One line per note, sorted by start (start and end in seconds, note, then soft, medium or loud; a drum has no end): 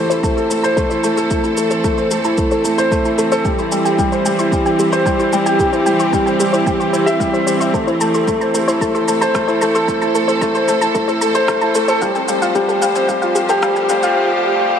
0.00 12.02 E3 medium
0.00 0.24 A3 medium
0.00 13.42 C4 medium
0.00 0.10 E4 medium
0.00 0.88 G4 medium
0.00 0.37 A4 medium
0.00 4.14 A4 medium
0.00 0.64 C5 medium
0.00 7.74 C5 medium
0.10 0.18 E4 medium
0.10 0.13 C5 medium
0.10 shaker soft
0.23 0.37 A3 medium
0.23 0.31 A5 medium
0.23 kick loud
0.23 shaker soft
0.37 0.50 A4 medium
0.37 0.42 C6 medium
0.37 shaker soft
0.50 0.64 A3 medium
0.50 0.58 A5 medium
0.50 shaker medium
0.63 0.77 C5 medium
0.63 0.69 A5 loud
0.63 shaker soft
0.77 0.85 A3 medium
0.77 0.82 A4 loud
0.77 kick medium
0.77 shaker soft
0.90 1.04 E4 medium
0.90 0.94 C5 loud
0.90 shaker soft
1.03 1.12 A3 medium
1.03 1.11 A5 medium
1.03 shaker medium
1.17 1.30 A4 medium
1.17 1.22 C6 medium
1.17 shaker soft
1.31 1.44 A3 medium
1.31 1.38 A5 medium
1.31 kick medium
1.31 shaker soft
1.44 1.57 E4 medium
1.44 1.49 A5 medium
1.44 shaker soft
1.57 1.71 A3 medium
1.57 1.63 A4 loud
1.57 shaker medium
1.71 1.84 A4 medium
1.71 1.74 C5 medium
1.71 shaker soft
1.84 1.92 A3 medium
1.84 1.92 A5 medium
1.84 kick loud
1.84 shaker soft
1.98 2.11 C5 medium
1.98 2.03 C6 medium
1.98 shaker soft
2.11 2.24 A3 medium
2.11 2.19 A5 medium
2.11 shaker medium
2.24 2.33 E4 medium
2.24 2.30 A5 medium
2.24 shaker soft
2.38 2.51 A3 medium
2.38 2.43 A4 loud
2.38 kick loud
2.38 shaker soft
2.51 2.64 A4 medium
2.51 2.55 C5 loud
2.51 shaker soft
2.65 2.78 A3 medium
2.65 2.72 A5 medium
2.65 shaker medium
2.78 2.91 C5 medium
2.78 2.83 C6 medium
2.78 shaker soft
2.92 2.99 A3 medium
2.92 2.99 A5 medium
2.92 kick medium
2.92 shaker soft
3.05 3.18 E4 medium
3.05 3.10 A5 loud
3.05 shaker soft
3.18 3.26 A3 medium
3.18 3.24 A4 medium
3.18 shaker medium
3.32 3.45 A4 loud
3.32 3.35 C5 loud
3.32 shaker soft
3.45 3.58 G3 medium
3.45 3.53 G5 loud
3.45 kick loud
3.45 shaker soft
3.58 3.72 E4 medium
3.58 3.64 C6 medium
3.58 shaker soft
3.72 3.85 G3 medium
3.72 3.80 G5 medium
3.72 shaker medium
3.85 3.98 G4 medium
3.85 3.90 G5 medium
3.85 shaker soft
3.99 4.07 G3 medium
3.99 4.04 G4 medium
3.99 kick loud
3.99 shaker soft
4.12 4.15 C5 medium
4.12 4.25 C5 medium
4.12 shaker soft
4.26 4.39 G3 medium
4.26 4.33 G5 medium
4.26 shaker medium
4.39 4.47 E4 medium
4.39 4.44 C6 medium
4.39 shaker soft
4.44 9.05 G4 medium
4.52 4.65 G3 medium
4.52 4.60 G5 medium
4.52 kick loud
4.52 shaker soft
4.66 4.79 G4 medium
4.66 4.71 G5 loud
4.66 shaker soft
4.79 4.92 G3 medium
4.79 4.84 G4 medium
4.79 shaker medium
4.92 5.05 C5 loud
4.92 4.96 C5 medium
4.92 shaker soft
5.06 5.14 G3 medium
5.06 5.14 G5 loud
5.06 kick loud
5.06 shaker soft
5.19 5.32 E4 medium
5.19 5.25 C6 medium
5.19 shaker soft
5.33 5.41 G3 medium
5.33 5.40 G5 medium
5.33 shaker medium
5.46 5.59 G4 loud
5.46 5.51 G5 medium
5.46 shaker soft
5.59 5.72 G3 medium
5.59 5.65 G4 loud
5.59 kick loud
5.59 shaker soft
5.73 5.86 E4 medium
5.73 5.76 C5 medium
5.73 shaker soft
5.86 5.99 G3 medium
5.86 5.94 G5 loud
5.86 shaker medium
5.99 6.12 G4 medium
5.99 6.05 C6 medium
5.99 shaker soft
6.13 6.21 G3 medium
6.13 6.21 G5 medium
6.13 kick loud
6.13 shaker soft
6.26 6.40 C5 medium
6.26 6.32 G5 loud
6.26 shaker soft
6.40 6.53 G3 medium
6.40 6.45 G4 loud
6.40 shaker medium
6.53 6.61 E4 medium
6.53 6.56 C5 medium
6.53 shaker soft
6.67 6.79 G3 medium
6.67 6.74 G5 loud
6.67 kick loud
6.67 shaker soft
6.80 6.93 G4 medium
6.80 6.85 C6 medium
6.80 shaker soft
6.93 7.06 E4 medium
6.93 6.96 C5 medium
6.93 shaker medium
7.06 7.10 G4 medium
7.06 7.19 E5 medium
7.06 shaker soft
7.20 7.33 G3 medium
7.20 7.25 E5 medium
7.20 kick loud
7.20 shaker soft
7.33 7.47 C4 medium
7.33 7.39 C5 medium
7.33 shaker soft
7.47 7.60 G3 medium
7.47 7.52 C5 loud
7.47 shaker medium
7.60 7.68 E5 medium
7.60 7.66 C6 medium
7.60 shaker soft
7.74 7.87 A3 medium
7.74 7.79 A4 loud
7.74 kick loud
7.74 shaker soft
7.87 8.00 E4 medium
7.87 7.90 C5 medium
7.87 shaker soft
8.01 8.14 A3 medium
8.01 8.08 A5 loud
8.01 shaker medium
8.14 8.27 A4 medium
8.14 8.19 C6 medium
8.14 shaker soft
8.27 8.35 A3 medium
8.27 8.35 A5 medium
8.27 kick loud
8.27 shaker soft
8.41 8.54 C5 medium
8.41 8.46 A5 loud
8.41 shaker soft
8.54 8.67 A3 medium
8.54 8.59 A4 medium
8.54 13.74 A4 medium
8.54 shaker medium
8.68 8.75 E4 medium
8.68 8.71 C5 loud
8.68 14.79 C5 medium
8.68 shaker soft
8.81 8.94 A3 medium
8.81 8.89 A5 loud
8.81 kick loud
8.81 shaker soft
8.95 9.07 A4 medium
8.95 9.00 C6 medium
8.95 shaker soft
9.08 9.21 A3 medium
9.08 9.16 A5 medium
9.08 shaker medium
9.21 9.34 C5 loud
9.21 9.26 A5 loud
9.21 shaker soft
9.35 9.42 A3 loud
9.35 9.40 A4 loud
9.35 kick medium
9.35 cross-stick medium
9.35 shaker soft
9.48 9.61 E4 medium
9.48 9.51 C5 loud
9.48 shaker soft
9.61 9.69 A3 medium
9.61 9.69 A5 medium
9.61 shaker medium
9.75 9.88 A4 medium
9.75 9.80 C6 medium
9.75 shaker soft
9.88 10.01 A3 medium
9.88 9.96 A5 medium
9.88 kick loud
9.88 shaker soft
10.02 10.15 E4 medium
10.02 10.07 A5 loud
10.02 shaker soft
10.15 10.28 A3 medium
10.15 10.20 A4 loud
10.15 shaker medium
10.28 10.41 A4 medium
10.28 10.31 C5 medium
10.28 shaker soft
10.41 10.50 A3 medium
10.41 10.49 A5 loud
10.41 kick loud
10.41 shaker soft
10.55 10.68 C5 medium
10.55 10.60 C6 medium
10.55 shaker soft
10.68 10.81 A3 medium
10.68 10.76 A5 medium
10.68 shaker medium
10.81 10.89 E4 medium
10.81 10.87 A5 loud
10.81 shaker soft
10.95 11.08 A3 medium
10.95 11.00 A4 loud
10.95 kick loud
10.95 shaker soft
11.08 11.21 A4 medium
11.08 11.11 C5 medium
11.08 shaker soft
11.21 11.35 A3 medium
11.21 11.29 A5 loud
11.21 shaker medium
11.35 11.48 C5 loud
11.35 11.40 C6 medium
11.35 shaker soft
11.48 11.57 A3 medium
11.48 11.56 A5 medium
11.48 kick medium
11.48 cross-stick medium
11.48 shaker soft
11.61 11.75 E4 medium
11.61 11.67 A5 loud
11.61 shaker soft
11.75 11.83 A3 loud
11.75 11.81 A4 medium
11.75 shaker medium
11.88 12.02 A4 loud
11.88 11.92 C5 loud
11.88 shaker soft
12.02 14.79 F3 medium
12.02 12.15 G3 medium
12.02 12.10 F5 loud
12.02 kick loud
12.02 shaker soft
12.15 12.29 C4 medium
12.15 12.21 G5 medium
12.15 shaker soft
12.25 14.79 A3 medium
12.25 12.36 F5 medium
12.25 shaker medium
12.29 12.42 G3 medium
12.42 12.55 F4 medium
12.42 12.47 F5 medium
12.42 shaker soft
12.55 12.63 G3 loud
12.55 12.61 G4 medium
12.55 14.79 G4 medium
12.55 kick loud
12.55 shaker soft
12.69 12.82 G4 medium
12.69 12.72 A4 loud
12.69 shaker soft
12.82 12.95 G3 medium
12.82 12.90 F5 medium
12.82 shaker medium
12.95 13.04 C4 medium
12.95 13.01 G5 medium
12.95 shaker soft
13.08 13.23 G3 medium
13.08 13.17 F5 medium
13.08 kick loud
13.08 shaker soft
13.22 13.36 F4 medium
13.22 13.28 F5 loud
13.22 shaker soft
13.35 13.49 G3 medium
13.35 13.41 G4 loud
13.35 shaker medium
13.49 13.63 G4 loud
13.49 13.53 A4 loud
13.49 shaker soft
13.62 13.71 G3 loud
13.62 13.70 F5 loud
13.62 kick loud
13.62 cross-stick medium
13.62 shaker soft
13.76 13.89 C4 medium
13.76 13.82 G5 medium
13.76 shaker soft
13.89 13.98 G3 loud
13.89 13.97 F5 medium
13.89 shaker medium
14.03 14.16 F4 loud
14.03 14.08 F5 medium
14.03 shaker soft